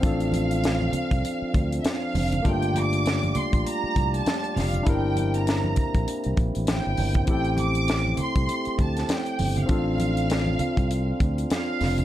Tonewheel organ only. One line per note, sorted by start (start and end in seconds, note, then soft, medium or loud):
0.00 2.42 F3 medium
0.00 2.41 C4 medium
0.00 2.42 D4 medium
2.45 4.84 G3 medium
2.45 4.84 F4 medium
2.45 4.84 G4 medium
2.45 4.84 D5 medium
4.86 7.25 A#3 medium
4.86 12.05 C4 medium
4.86 7.25 E4 medium
7.29 9.67 A3 medium
7.29 9.67 G4 medium
9.68 12.05 D4 medium
9.68 12.05 F4 medium